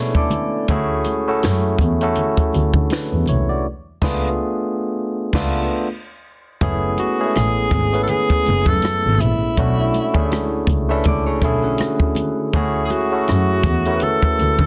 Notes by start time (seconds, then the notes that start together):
Already playing: A3 B3 C#4 D4 E4 G#4 A4 C#5 G#5
0.15 A4 D5, kick
0.30 closed hi-hat, muted conga, high conga, low conga
0.68 D2 A3 C#4 E4 F#4 G#4, kick, closed hi-hat
1.04 closed hi-hat, high conga
1.28 A3 C#4 E4 F#4 A4
1.43 F#2, finger snap, snare, closed hi-hat, muted conga, high conga
1.79 E2, kick, closed hi-hat, high conga, low conga
2.01 A3 C#4 E4 F#4 A4, closed hi-hat
2.15 closed hi-hat, muted conga, low conga
2.37 kick, closed hi-hat
2.53 D2, closed hi-hat, muted conga, high conga
2.74 D3, kick
2.90 D4 B4, finger snap, snare, closed hi-hat, high conga
3.12 E2
3.26 C2 E4 C#5, closed hi-hat, muted conga, high conga, low conga
3.49 F#4 D5
4.02 C#2 A3 B3 D4 F4 G#4 B4, kick, snare, crash
5.33 C#2 A3 B3 D4 F4 A4 B4, kick, snare, crash
6.61 F#1 A3 B3 C#4 E4 G#4, kick, closed hi-hat, muted conga
6.97 F#4, closed hi-hat, muted conga, high conga
7.19 G#3 B3 C#4 E4 G#4
7.25 A3
7.35 A1 G#4, cross-stick, closed hi-hat, muted conga, high conga
7.71 G#1, kick, closed hi-hat, high conga, low conga
7.93 A3 B3 C#4 E4 B4, closed hi-hat
8.03 A4
8.07 G#4, closed hi-hat, muted conga, low conga
8.30 kick
8.45 F#1, closed hi-hat, muted conga, high conga
8.66 F#2 A4, kick
8.82 cross-stick, closed hi-hat, muted conga, high conga
9.05 G#1
9.18 A#1 E4, closed hi-hat, muted conga, high conga, low conga
9.57 B1 A3 C#4 D4 E4 F#4, kick, closed hi-hat
9.94 closed hi-hat, muted conga, high conga
10.14 D2 A3 C#4 D4 E4 G#4, kick
10.31 cross-stick, closed hi-hat, high conga
10.67 C#2, kick, closed hi-hat, high conga, low conga
10.89 A3 C#4 D4 E4 A4 B4 E5
11.04 C#2 A4 D5, kick, closed hi-hat, low conga
11.27 G#4 C#5
11.42 B1 D3 A3 C#4 E4 G#4 A4, kick, closed hi-hat, muted conga, high conga
11.63 C#4 F#4
11.78 cross-stick, closed hi-hat, muted conga, high conga
12.00 kick
12.15 closed hi-hat, high conga, low conga
12.53 D2 A3 C#4 E4 F#4 G#4, kick, closed hi-hat, muted conga
12.85 G#4
12.90 F#4, closed hi-hat, muted conga, high conga
13.12 A3 C#4 E4 F#4 A4
13.28 F#2, cross-stick, closed hi-hat, muted conga, high conga
13.63 E2, kick, closed hi-hat, muted conga, high conga, low conga
13.85 A3 C#4 E4 F#4 A#4, closed hi-hat
13.94 B4
14.00 A4, closed hi-hat, muted conga, low conga
14.22 kick
14.38 D2, closed hi-hat, muted conga, high conga
14.59 D3, kick